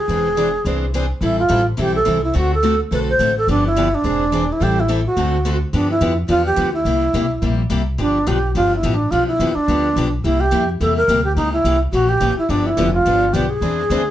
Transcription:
Already playing: G#4
0.08 E1 E3 C4 D4 G#4 C5
0.37 E3 C4 D4 G#4 C5
0.65 C2 E3 C4 D4 G#4 C5
0.94 E3 C4 D4 G#4 C5
1.21 A1 E3 G3 C4 E4 A4
1.39 F4
1.48 A1 E3 G3 C4 E4 A4
1.77 B1 E3 G3 C4 E4 G4 A4
1.96 A4
2.05 C2 E3 G3 C4 E4 A4
2.24 E4
2.33 D2 D3 A3 C4 F#4 A4
2.38 F#4
2.55 A4
2.63 D3 A3 C4 F#4 A4
2.91 B1 D3 A3 C4 F#4 A4 B4
3.09 C5
3.19 A1 D3 A3 C4 F#4 A4
3.38 A4
3.47 G1 D3 F3 B3 D4 G4
3.66 E4
3.77 D3 F3 B3 D4 G4
3.95 D4
4.04 E1 E3 C4 D4 G#4 C5
4.32 E3 C4 D4 G#4 C5
4.52 E4
4.60 A1 E3 G3 C4 E4 G4 A4
4.80 E4
4.88 E3 G3 C4 E4 A4
5.07 F#4
5.16 D2 D3 A3 C4 F#4 A4
5.45 D3 A3 C4 F#4 A4
5.73 G2 D3 F3 B3 D4 G4
5.91 E4
6.01 F2 D3 F3 B3 D4 G4
6.28 E2 D3 F3 B3 D4 F4 G4
6.46 G4
6.56 D2 D3 F3 B3 D4 G4
6.74 E4
6.85 C2 C3 G3 A#3 E4 G4
7.13 B1 C3 G3 A#3 E4 G4
7.42 A#1 C3 G3 A#3 E4 G4
7.70 C2 C3 G3 A#3 E4 G4
7.98 G1 D3 F3 B3 D4 G4
8.26 B1 D3 F3 B3 D4 G4
8.55 G1 D3 F3 B3 D4 F4 G4
8.76 E4
8.83 A1 D3 F3 B3 D4 G4
8.94 D4
9.11 B1 D3 F3 B3 D4 F4 G4
9.27 E4
9.39 D#2 D3 F3 B3 D4 G4
9.55 D4, muted upright bass stroke
9.68 D2 D3 F3 B3 D4 G4
9.96 B1 D3 F3 B3 D4 G4
10.24 C2 C3 G3 A#3 E4 G4
10.40 G4
10.51 F2 C3 G3 A#3 E4 G4
10.80 E2 C3 G3 A#3 E4 G4 A4
10.97 A#4
11.08 D2 C3 G3 A#3 E4 G4
11.24 G4
11.36 C#2 C#3 E3 A#3 C#4 D#4 G4
11.53 E4
11.64 C2 C#3 E3 A#3 C#4 G4
11.92 A#1 C#3 E3 A#3 C#4 F#4 G4
12.09 G4
12.20 A1 C#3 E3 A#3 C#4 G4
12.37 E4, muted upright bass stroke
12.49 G1 D3 F3 B3 D4 G4
12.66 E4
12.77 F1 D3 F3 B3 D4 G4
12.94 F4
13.05 G1 D3 F3 B3 D4 G4
13.33 B1 D3 F3 B3 D4 G4
13.50 G#4
13.61 E2 E3 C4 D4 G#4 C5
13.90 D2 E3 C4 D4 G#4 C5

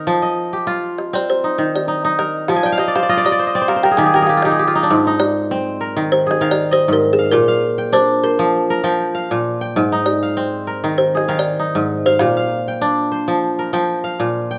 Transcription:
Already playing: D#3 C4 D#4 A#4
0.07 F3
0.22 D#5
0.53 G4
0.67 F4
0.98 D#5
1.13 C4 D5
1.30 C5
1.44 D#4
1.58 D#3
1.76 D5
1.88 D#4
2.05 D#4
2.19 A#4 D#5
2.48 F3 F5
2.56 G#5
2.63 D5 G5
2.72 F5
2.78 D#5
2.88 D5
2.95 C5 F5
3.03 D5
3.09 F4 D#5
3.17 D5
3.25 D5 D#5
3.32 D5
3.39 C5
3.47 D#5
3.55 C4 D5
3.62 C5
3.68 A#4 F5
3.76 C5
3.83 A#4 G5
3.91 G#4
3.97 D#3 G4 G#5
4.06 G#4
4.14 A#4 G5
4.22 G#4
4.27 G4 F5
4.37 F4
4.42 D#4 G4 D#5
4.52 G#4
4.59 G4
4.67 F4
4.75 D#4
4.83 D4
4.90 G#2
5.07 D#4
5.20 D5
5.51 C4
5.81 A#4
5.97 D#3
6.12 C5
6.27 G#4
6.31 D#5
6.41 D#3 F5
6.51 D5
6.71 C5 D#5
6.88 G#2
6.93 A#4
7.13 G#4
7.19 F5
7.32 A#2 A#4
7.48 F5
7.78 G5
7.92 D4 C5
8.23 A#4 C5
8.39 F3
8.70 A#4
8.84 F3 G5
9.15 F5
9.31 A#2
9.61 G5
9.76 G#2
9.92 D#4
10.06 D5
10.23 F5
10.37 C4
10.67 A#4
10.84 D#3
10.98 C5
11.15 G#4 D#5
11.28 D#3 F5
11.39 D5
11.59 D#4
11.75 G#2
12.06 C5 F5
12.19 A#2 F5
12.37 F5
12.68 G5
12.81 D4
13.12 C5
13.28 F3
13.59 A#4
13.73 F3 G5
14.04 F5
14.20 A#2
14.51 G5

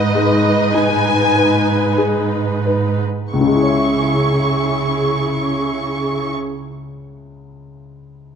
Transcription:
Already playing: G#2 D#4 B4 D#5
0.15 G#3
0.74 D#4 G#5
1.36 B4
1.98 G#4
2.66 B4
3.32 C#2 C#3 E4 G#4 C#6
3.41 C#3
3.47 G#3
3.54 E4
3.62 C#5
3.69 E5

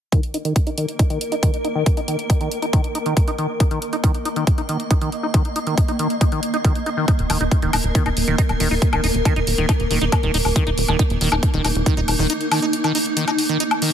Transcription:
0.12 D#3 A#3 A#4, kick, closed hi-hat
0.23 closed hi-hat
0.34 D#4, closed hi-hat
0.45 D#3, closed hi-hat
0.56 kick, closed hi-hat
0.67 D#4, closed hi-hat
0.78 D#3, closed hi-hat
0.88 closed hi-hat
0.99 D#4, kick, closed hi-hat
1.10 D#3, closed hi-hat
1.21 closed hi-hat
1.32 D#4, closed hi-hat
1.43 D#3, kick, closed hi-hat
1.54 closed hi-hat
1.65 D#4, closed hi-hat
1.75 D#3
1.86 kick, closed hi-hat
1.97 D#4, closed hi-hat
2.08 D#3, closed hi-hat
2.19 closed hi-hat
2.30 D#4, kick, closed hi-hat
2.41 D#3, closed hi-hat
2.52 closed hi-hat
2.62 D#4, closed hi-hat
2.73 D#3, kick, closed hi-hat
2.84 closed hi-hat
2.95 D#4, closed hi-hat
3.06 D#3, closed hi-hat
3.17 kick, closed hi-hat
3.28 D#4, closed hi-hat
3.38 D#3, closed hi-hat
3.60 D#4 D#5, kick, closed hi-hat
3.71 D#3, closed hi-hat
3.82 closed hi-hat
3.93 D#4, closed hi-hat
4.04 D#3, kick, closed hi-hat
4.15 closed hi-hat
4.25 D#4, closed hi-hat
4.36 D#3, closed hi-hat
4.47 kick, closed hi-hat
4.58 D#4, closed hi-hat
4.69 D#3, closed hi-hat
4.80 closed hi-hat
4.91 D#4, kick, closed hi-hat
5.01 D#3, closed hi-hat
5.12 closed hi-hat
5.23 D#4
5.34 D#3, kick, closed hi-hat
5.45 closed hi-hat
5.56 D#4, closed hi-hat
5.67 D#3, closed hi-hat
5.78 kick, closed hi-hat
5.88 D#4, closed hi-hat
5.99 D#3, closed hi-hat
6.10 closed hi-hat
6.21 D#4, kick, closed hi-hat
6.32 D#3, closed hi-hat
6.43 closed hi-hat
6.54 D#4, closed hi-hat
6.65 D#3, kick, closed hi-hat
6.75 closed hi-hat
6.86 D#4, closed hi-hat
6.97 D#3
7.08 D#4 A#4, kick, closed hi-hat
7.19 D#1, closed hi-hat
7.30 D#1 D#3, open hi-hat, high woodblock
7.41 D#1 D#4, closed hi-hat
7.51 kick, closed hi-hat
7.62 D#1 D#3, closed hi-hat
7.73 D#1 D#4, open hi-hat, high woodblock
7.84 D#1, closed hi-hat
7.95 D#3, kick, closed hi-hat
8.06 D#1 D#4, closed hi-hat, high woodblock
8.17 D#1, open hi-hat
8.28 D#1 D#3, closed hi-hat
8.38 D#4, kick, closed hi-hat
8.49 D#1, closed hi-hat, high woodblock
8.60 D#1 D#3, open hi-hat
8.71 D#1 D#4
8.82 kick, closed hi-hat
8.93 D#1 D#3, closed hi-hat, high woodblock
9.04 D#1 D#4, open hi-hat
9.14 D#1, closed hi-hat
9.25 D#3, kick, closed hi-hat, high woodblock
9.36 D#1 D#4, closed hi-hat
9.47 D#1, open hi-hat
9.58 D#1 D#3, closed hi-hat
9.69 D#4, kick, closed hi-hat, high woodblock
9.80 D#1, closed hi-hat
9.91 D#1 D#3, open hi-hat
10.01 D#1 D#4, closed hi-hat
10.12 kick, closed hi-hat, high woodblock
10.23 D#1 D#3, closed hi-hat
10.34 D#1 D#4, open hi-hat
10.45 D#1, high woodblock
10.56 D#3 D#4, kick, closed hi-hat
10.67 D#1 D#4, closed hi-hat
10.78 D#1, open hi-hat
10.88 D#1 D#3, closed hi-hat, high woodblock
10.99 D#4, kick, closed hi-hat
11.10 D#1, closed hi-hat
11.21 D#1 D#3, open hi-hat
11.32 D#1 D#4, closed hi-hat, high woodblock
11.43 kick, closed hi-hat
11.54 D#1 D#3, closed hi-hat
11.65 D#1 D#4, open hi-hat, high woodblock
11.75 D#1, closed hi-hat
11.86 D#3, kick, closed hi-hat
11.97 D#1 D#4, closed hi-hat
12.08 D#1, open hi-hat, high woodblock
12.19 D#1 D#3
12.30 D#4, closed hi-hat
12.41 closed hi-hat
12.52 D#3, open hi-hat, high woodblock
12.62 D#4, closed hi-hat
12.73 closed hi-hat
12.84 D#3, closed hi-hat, high woodblock
12.95 D#4, open hi-hat
13.06 closed hi-hat
13.17 D#3, closed hi-hat
13.28 D#4, closed hi-hat, high woodblock
13.38 open hi-hat
13.49 D#3, closed hi-hat
13.60 D#4, closed hi-hat
13.71 closed hi-hat, high woodblock
13.82 D#3, open hi-hat

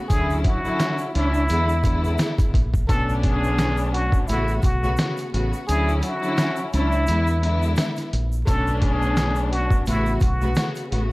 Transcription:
0.09 D2 D3 F#3 C#4 E4 G#4, kick, closed hi-hat, shaker
0.30 shaker
0.44 F#4, kick, closed hi-hat
0.63 D3 F#3 C#4 E4, shaker
0.79 snare, closed hi-hat, shaker
0.98 shaker
1.14 C#2 F#3 C#4 D4 E4, closed hi-hat
1.34 shaker
1.48 E2 D3 G#3 B3 E4, closed hi-hat, shaker
1.69 shaker
1.83 D3 G#3 B3 E4, kick, closed hi-hat, shaker
2.04 shaker
2.18 snare, closed hi-hat, shaker
2.38 kick, closed hi-hat, shaker
2.54 A#1, kick, closed hi-hat
2.74 kick, shaker
2.87 B1 A3 B3 C#4 D4 A4, kick, closed hi-hat, shaker
3.09 shaker
3.23 G#4, kick, closed hi-hat
3.44 shaker
3.59 snare, closed hi-hat, shaker
3.77 shaker
3.93 F#4, closed hi-hat
4.12 kick, shaker
4.27 A1 C#3 A3 B3 E4 F#4, closed hi-hat, shaker
4.48 shaker
4.62 B1 F#4, kick, closed hi-hat, shaker
4.82 C#3 A3 B3 F#4, shaker
4.97 C#3 A3 B3 F#4, snare, closed hi-hat, shaker
5.17 closed hi-hat, shaker
5.32 A1 C#3 A3 B3 F#4, closed hi-hat
5.53 shaker
5.67 D2 D3 F#3 C#4 E4 G#4, closed hi-hat, shaker
5.88 shaker
6.02 F#4, closed hi-hat, shaker
6.22 D3 F#3 C#4 E4, shaker
6.38 snare, closed hi-hat, shaker
6.56 shaker
6.72 C#2 F#3 C#4 D4 E4, closed hi-hat, shaker
6.92 shaker
7.07 E2 D3 G#3 B3 E4, closed hi-hat, shaker
7.27 shaker
7.41 D3 G#3 B3 E4, closed hi-hat
7.62 shaker
7.76 snare, closed hi-hat, shaker
7.96 snare, closed hi-hat, shaker
8.13 A#1, closed hi-hat
8.32 shaker
8.46 B1 A3 B3 C#4 D4 A4, kick, closed hi-hat, shaker
8.67 shaker
8.81 G#4, kick, closed hi-hat
9.02 shaker
9.17 snare, closed hi-hat, shaker
9.35 shaker
9.51 F#4, closed hi-hat
9.70 kick, shaker
9.86 A1 C#3 A3 B3 E4 F#4, closed hi-hat, shaker
10.06 shaker
10.20 B1 F#4, kick, closed hi-hat, shaker
10.41 C#3 A3 B3 F#4, shaker
10.55 C#3 A3 B3 F#4, snare, closed hi-hat, shaker
10.75 closed hi-hat, shaker
10.90 A1 C#3 A3 B3 F#4, closed hi-hat

